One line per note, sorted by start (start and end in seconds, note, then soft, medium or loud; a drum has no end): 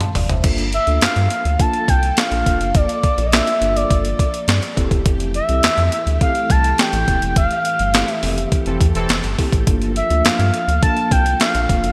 0.00 0.14 F5 medium
0.00 0.15 A5 medium
0.00 closed hi-hat medium
0.00 mid tom medium
0.15 0.27 F1 medium
0.15 0.29 D5 medium
0.15 0.29 F5 medium
0.15 floor tom medium
0.15 open hi-hat medium
0.29 0.41 F#1 medium
0.29 0.58 C5 medium
0.29 0.57 E5 medium
0.29 closed hi-hat soft
0.29 floor tom medium
0.44 0.79 G1 medium
0.44 4.73 F3 medium
0.44 0.67 A#3 medium
0.44 4.73 A#3 medium
0.44 0.67 D4 medium
0.44 0.67 F4 medium
0.44 4.73 A4 medium
0.44 0.67 A4 medium
0.44 kick loud
0.44 closed hi-hat medium
0.44 crash loud
0.58 closed hi-hat medium
0.72 1.00 E5 loud
0.72 closed hi-hat medium
0.87 0.99 D2 loud
0.87 1.25 A#3 medium
0.87 1.25 D4 medium
0.87 1.26 F4 medium
0.87 1.26 A4 medium
0.87 closed hi-hat medium
1.01 1.08 G2 soft
1.01 1.62 F5 loud
1.01 snare loud
1.01 clap loud
1.01 closed hi-hat medium
1.16 1.28 G2 loud
1.16 closed hi-hat medium
1.30 closed hi-hat medium
1.45 1.57 D2 loud
1.45 closed hi-hat medium
1.59 1.90 A#3 medium
1.59 1.90 D4 medium
1.59 1.90 F4 medium
1.59 1.90 A4 medium
1.59 1.91 A5 loud
1.59 kick loud
1.59 closed hi-hat medium
1.73 closed hi-hat soft
1.88 2.12 C2 medium
1.88 2.19 G5 loud
1.88 kick medium
1.88 closed hi-hat medium
2.03 closed hi-hat medium
2.17 2.23 A3 medium
2.17 2.78 D4 medium
2.17 2.78 F4 medium
2.17 2.78 A4 medium
2.17 2.77 F5 loud
2.17 snare loud
2.17 clap loud
2.17 closed hi-hat medium
2.31 2.43 A#1 medium
2.31 closed hi-hat medium
2.46 2.58 F1 medium
2.46 kick medium
2.46 closed hi-hat medium
2.60 2.72 F#1 medium
2.60 closed hi-hat medium
2.75 2.86 G1 loud
2.75 3.28 D5 loud
2.75 kick loud
2.75 closed hi-hat medium
2.89 closed hi-hat medium
3.03 kick medium
3.03 closed hi-hat medium
3.18 3.41 A#1 loud
3.18 closed hi-hat soft
3.26 3.35 D#5 medium
3.32 3.48 A#3 medium
3.32 3.48 D4 medium
3.32 3.48 F4 medium
3.32 3.48 A4 medium
3.32 3.78 E5 loud
3.32 snare loud
3.32 clap medium
3.32 closed hi-hat medium
3.47 closed hi-hat medium
3.61 3.85 G1 medium
3.61 4.23 A#3 medium
3.61 4.23 D4 medium
3.61 4.23 F4 medium
3.61 4.23 A4 medium
3.61 closed hi-hat medium
3.76 4.62 D5 medium
3.76 closed hi-hat medium
3.91 4.14 G1 loud
3.91 kick medium
3.91 closed hi-hat medium
4.05 closed hi-hat soft
4.19 kick medium
4.19 closed hi-hat medium
4.34 closed hi-hat medium
4.48 4.60 G2 loud
4.48 snare loud
4.48 clap medium
4.48 closed hi-hat medium
4.63 closed hi-hat medium
4.76 4.89 F1 loud
4.76 9.63 E3 medium
4.76 9.63 A3 medium
4.76 5.34 C4 medium
4.76 5.34 E4 medium
4.76 9.63 G4 medium
4.76 5.35 G4 medium
4.76 5.35 A4 loud
4.76 kick medium
4.76 closed hi-hat medium
4.91 5.03 E1 loud
4.91 kick loud
4.91 closed hi-hat medium
5.06 5.41 F1 loud
5.06 kick loud
5.06 closed hi-hat medium
5.20 closed hi-hat medium
5.34 6.17 E5 loud
5.34 closed hi-hat medium
5.49 5.61 C2 medium
5.49 5.87 C4 medium
5.49 5.87 E4 medium
5.49 5.87 G4 medium
5.49 5.87 A4 medium
5.49 closed hi-hat soft
5.63 5.69 F2 medium
5.63 snare loud
5.63 clap loud
5.63 closed hi-hat medium
5.78 5.89 F2 medium
5.78 closed hi-hat medium
5.92 closed hi-hat medium
6.07 6.18 D2 medium
6.07 closed hi-hat medium
6.21 6.51 C4 medium
6.21 6.51 E4 medium
6.21 6.52 G4 medium
6.21 6.52 A4 medium
6.21 6.52 F5 loud
6.21 kick loud
6.21 closed hi-hat medium
6.35 closed hi-hat soft
6.50 6.73 C2 loud
6.50 6.81 A5 loud
6.50 kick loud
6.50 closed hi-hat medium
6.64 closed hi-hat medium
6.78 7.40 C4 medium
6.78 7.40 E4 medium
6.78 7.40 G4 medium
6.78 7.40 A4 medium
6.78 7.37 G5 loud
6.78 snare loud
6.78 clap loud
6.78 closed hi-hat medium
6.93 7.05 A1 loud
6.93 closed hi-hat medium
7.08 7.19 D#1 loud
7.08 kick medium
7.08 closed hi-hat medium
7.22 7.34 E1 medium
7.22 closed hi-hat medium
7.36 7.48 F1 loud
7.36 8.10 F5 loud
7.36 kick loud
7.36 closed hi-hat medium
7.51 closed hi-hat medium
7.65 closed hi-hat medium
7.79 8.03 G1 loud
7.79 closed hi-hat medium
7.94 8.09 C4 medium
7.94 8.09 E4 medium
7.94 8.10 G4 medium
7.94 8.10 A4 medium
7.94 snare loud
7.94 clap medium
7.94 closed hi-hat loud
8.08 8.48 E5 loud
8.08 closed hi-hat medium
8.23 8.46 F1 medium
8.23 8.84 C4 medium
8.23 8.84 E4 medium
8.23 8.84 G4 medium
8.23 8.84 A4 loud
8.23 open hi-hat medium
8.38 closed hi-hat medium
8.52 kick loud
8.52 closed hi-hat medium
8.66 8.78 F1 loud
8.66 8.78 E3 medium
8.66 8.78 C4 medium
8.66 8.78 A4 medium
8.66 closed hi-hat soft
8.81 8.92 E2 loud
8.81 kick loud
8.81 closed hi-hat medium
8.95 9.07 E1 medium
8.95 9.19 E3 loud
8.95 9.19 C4 loud
8.95 9.19 A4 loud
8.95 closed hi-hat medium
9.09 9.21 F1 medium
9.09 snare loud
9.09 clap medium
9.09 closed hi-hat medium
9.24 9.36 G1 medium
9.24 closed hi-hat medium
9.38 9.53 C4 medium
9.38 9.54 E4 medium
9.38 9.54 G4 medium
9.38 9.54 A4 medium
9.38 kick medium
9.38 open hi-hat medium
9.53 9.64 A1 medium
9.53 kick loud
9.53 closed hi-hat medium
9.67 10.02 G1 loud
9.67 11.92 F3 medium
9.67 9.90 A#3 medium
9.67 11.92 A#3 medium
9.67 9.90 D4 medium
9.67 9.90 F4 medium
9.67 11.92 A4 medium
9.67 9.90 A4 loud
9.67 kick loud
9.67 closed hi-hat loud
9.82 closed hi-hat medium
9.96 10.27 E5 loud
9.96 closed hi-hat medium
10.10 10.22 D2 medium
10.10 10.49 A#3 medium
10.10 10.49 D4 medium
10.10 10.49 F4 medium
10.10 10.49 A4 medium
10.10 closed hi-hat medium
10.25 10.30 G2 soft
10.25 10.82 F5 loud
10.25 snare loud
10.25 clap medium
10.25 closed hi-hat medium
10.39 10.51 G2 medium
10.39 closed hi-hat medium
10.54 closed hi-hat medium
10.68 10.80 D2 medium
10.68 closed hi-hat medium
10.82 11.13 A#3 medium
10.82 11.13 D4 medium
10.82 11.13 F4 medium
10.82 11.13 A4 medium
10.82 11.13 A5 loud
10.82 kick loud
10.82 closed hi-hat medium
10.97 closed hi-hat soft
11.11 11.35 C2 medium
11.11 11.40 G5 loud
11.11 kick loud
11.11 closed hi-hat medium
11.26 closed hi-hat medium
11.40 11.92 A#3 medium
11.40 11.92 D4 medium
11.40 11.92 F4 medium
11.40 11.92 A4 medium
11.40 11.92 F5 loud
11.40 snare loud
11.40 clap loud
11.40 closed hi-hat medium
11.55 11.66 A#1 medium
11.55 closed hi-hat medium
11.69 11.81 F1 medium
11.69 kick medium
11.69 closed hi-hat medium
11.84 11.92 F#1 loud
11.84 closed hi-hat medium